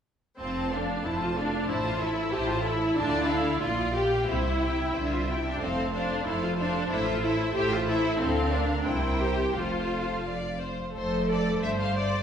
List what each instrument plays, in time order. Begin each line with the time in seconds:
0.39 double bass section F1, cello section F2, viola section C4, violin section F4 C5 A5
0.72 viola section D4, violin section A4 F5
1.05 double bass section F1, cello section F2, viola section E4, violin section F4 C5 A5
1.22 viola section F4
1.37 viola section D4, violin section A4 F5
1.69 double bass section A1, cello section A2, viola section E4, violin section E4 C5 A5
1.85 viola section F4
2.01 viola section E4, violin section A4 E5
2.33 double bass section A1, cello section A2, violin section E4 C5 A5, viola section G4
2.50 viola section F4
2.65 viola section E4, violin section A4 E5
2.97 double bass section D2, cello section D3, viola section D4, violin section F4 D5 A5
3.28 viola section E4, violin section A4 F5
3.61 double bass section A#1, cello section A#2, viola section F4, violin section F4 D5 F5
3.95 viola section G4, violin section G4 F5 G5
4.28 double bass section C2, cello section C3, viola section E4, violin section E4 C5 E5
4.62 violin section G4 E5 G5
4.95 double bass section C2, cello section D3, violin section E4 C5 E5
5.12 viola section F4
5.28 cello section C3, viola section E4, violin section G4 E5 G5
5.45 viola section D4
5.61 double bass section F1, cello section F2, viola section C4, violin section A4 C5 F5
5.94 viola section D4, violin section A4 C5 F5
6.26 double bass section F1, cello section F2, viola section E4, violin section A4 C5 F5
6.43 viola section F4
6.59 viola section D4, violin section A4 C5 F5
6.91 double bass section A1, cello section A2, viola section E4, violin section A4 C5 E5
7.07 viola section F4
7.23 viola section E4, violin section A4 C5 E5
7.56 double bass section A1, cello section A2, viola section G4, violin section A4 C5 E5
7.72 viola section F4
7.88 viola section E4, violin section A4 C5 E5
8.20 double bass section D2, cello section D3, viola section C4, violin section A4 F5
8.53 viola section D4, violin section A#4
8.86 double bass section C2, cello section C3, viola section E4, violin section A#4 C5 G5
9.21 viola section G4
9.56 double bass section F1, cello section F2, viola section F4, violin section A4 C5 F5
10.27 violin section D5
10.62 violin section C5
10.96 double bass section F1, cello section F2, violin section A3 A4 C5, viola section A4
11.31 violin section D5
11.62 double bass section G1, cello section G2, viola section C5, violin section C5 E5
11.80 violin section F5
11.97 violin section D5